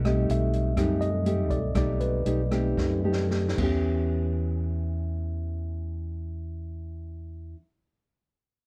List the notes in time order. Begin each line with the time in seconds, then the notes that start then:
Already playing: B1 B2
0.05 G3 A3 C4 D#4 G4 D#5, cross-stick, closed hi-hat
0.29 B1 E5, closed hi-hat
0.53 closed hi-hat
0.76 F#2 G3 A3 C4 D#4 G4, kick, cross-stick, closed hi-hat
1.01 D#5, closed hi-hat
1.25 A3 D#4 G4, closed hi-hat
1.50 B1 D5, kick, closed hi-hat
1.75 B1 B2 A3 D#4 G4 D5, kick, cross-stick, closed hi-hat
2.00 B4, closed hi-hat
2.26 B1 A3 D#4 G4, closed hi-hat
2.51 A3 C4 D#4 G4, cross-stick, closed hi-hat
2.78 F#2, kick, snare
3.04 A3 D#4 G4
3.13 snare
3.30 A3 D#4 G4, snare
3.48 snare
3.56 E2 E3 B3, kick, crash
3.61 C#4 G4